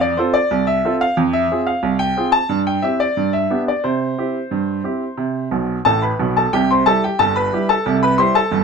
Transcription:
0.00 0.12 F2 medium
0.00 0.17 D5 medium
0.17 0.36 C4 medium
0.17 0.36 F4 medium
0.17 0.37 A4 medium
0.17 0.34 C5 medium
0.34 0.65 D5 medium
0.51 0.79 C2 medium
0.67 0.93 E5 medium
0.85 1.02 C4 medium
0.85 1.03 F4 medium
0.85 1.03 A4 medium
1.01 1.17 F5 medium
1.17 1.45 F2 medium
1.33 1.60 E5 medium
1.51 1.69 C4 soft
1.51 1.69 F4 soft
1.51 1.69 G#4 medium
1.67 1.98 F5 medium
1.83 2.11 C2 medium
1.99 2.31 G5 medium
2.17 2.35 C4 medium
2.17 2.35 F4 medium
2.17 2.35 G#4 medium
2.32 2.59 A5 loud
2.49 2.77 G2 medium
2.67 2.83 G5 medium
2.82 3.01 C4 medium
2.82 3.02 E4 soft
2.82 3.02 G4 soft
2.82 2.99 E5 medium
3.00 3.31 D5 medium
3.17 3.45 G2 medium
3.33 3.60 E5 medium
3.50 3.68 B3 soft
3.50 3.69 D4 soft
3.50 3.69 G4 soft
3.68 3.84 D5 medium
3.84 4.12 C3 medium
3.84 5.72 C5 medium
4.18 4.36 C4 soft
4.18 4.36 E4 soft
4.18 4.37 G4 soft
4.51 4.79 G2 medium
4.84 5.02 C4 soft
4.84 5.03 E4 soft
4.84 5.03 G4 soft
5.17 5.46 C3 medium
5.51 5.77 B1 medium
5.51 5.77 B2 medium
5.85 6.10 A1 medium
5.85 6.11 A2 medium
5.85 6.01 A4 medium
5.85 6.02 A5 medium
6.02 6.34 B4 soft
6.02 6.29 B5 medium
6.19 6.44 B1 medium
6.19 6.44 B2 medium
6.37 6.52 A4 medium
6.37 6.53 A5 medium
6.53 6.81 C2 medium
6.53 6.81 C3 medium
6.53 6.69 G4 medium
6.53 6.69 G5 medium
6.71 6.86 C5 medium
6.71 6.86 C6 medium
6.86 7.05 G3 medium
6.86 7.05 E4 soft
6.86 7.04 G4 medium
6.86 7.02 A4 medium
6.86 7.02 A5 medium
7.04 7.19 G4 medium
7.04 7.20 G5 medium
7.19 7.47 G1 medium
7.19 7.48 G2 medium
7.19 7.35 A4 medium
7.19 7.36 A5 medium
7.36 7.67 B4 medium
7.36 7.67 B5 medium
7.53 7.71 G3 soft
7.53 7.71 E4 soft
7.53 7.71 G4 medium
7.69 8.00 A4 medium
7.69 7.96 A5 medium
7.86 8.14 C2 medium
7.86 8.14 C3 medium
8.03 8.18 B4 medium
8.03 8.19 B5 medium
8.18 8.37 G3 medium
8.18 8.37 E4 medium
8.18 8.37 G4 medium
8.18 8.35 C5 medium
8.18 8.35 C6 loud
8.35 8.64 A4 medium
8.35 8.64 A5 medium
8.51 8.64 G1 medium
8.51 8.64 G2 medium

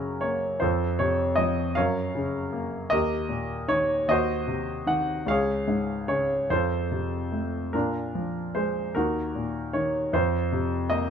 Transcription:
0.00 0.58 F#2 medium
0.00 0.59 C#3 soft
0.00 0.58 C#4 soft
0.00 0.58 F#4 soft
0.00 0.25 A#4 medium
0.21 0.60 A#3 soft
0.21 0.62 C#5 medium
0.60 1.73 F2 medium
0.60 1.72 F4 soft
0.60 1.73 A4 soft
0.60 1.00 C5 medium
0.99 1.74 C3 soft
0.99 1.39 C#5 medium
1.36 1.75 F3 soft
1.36 1.76 D#5 medium
1.75 2.88 F#2 medium
1.75 2.88 A#4 medium
1.75 2.88 C#5 medium
1.75 2.58 F5 medium
2.15 2.90 C#3 soft
2.53 2.90 A#3 soft
2.90 4.05 D#2 medium
2.90 4.06 G4 medium
2.90 4.05 A#4 medium
2.90 3.71 D#5 medium
3.29 4.06 A#2 soft
3.68 4.07 D#3 soft
3.68 4.10 C#5 medium
4.08 5.24 D#2 medium
4.08 5.25 F#4 medium
4.08 5.25 C5 medium
4.08 4.90 D#5 medium
4.47 5.25 C3 soft
4.87 5.26 D#3 soft
4.87 5.29 F#5 medium
5.26 6.46 C#2 medium
5.26 6.47 G#4 medium
5.26 6.07 C#5 medium
5.26 6.12 F5 medium
5.68 6.48 G#2 soft
6.08 6.49 C#3 soft
6.08 6.51 C#5 medium
6.50 7.70 F2 soft
6.50 7.71 F4 medium
6.50 7.71 A4 soft
6.50 7.40 C5 medium
6.92 7.72 C3 soft
7.32 7.72 A3 soft
7.73 8.91 A#2 soft
7.73 8.91 D4 soft
7.73 8.91 F4 soft
7.73 8.57 A#4 medium
8.15 8.93 F3 soft
8.55 8.94 G#3 soft
8.55 8.92 C5 medium
8.95 10.09 D#2 medium
8.95 10.09 D#4 soft
8.95 10.10 F#4 soft
8.95 9.76 A#4 medium
9.35 10.11 A#2 soft
9.73 10.12 D#3 soft
9.73 10.14 C#5 medium
10.13 11.10 F2 medium
10.13 11.10 F4 medium
10.13 10.93 C5 medium
10.52 11.10 C3 soft
10.90 11.10 A#3 soft
10.90 11.10 D#5 medium

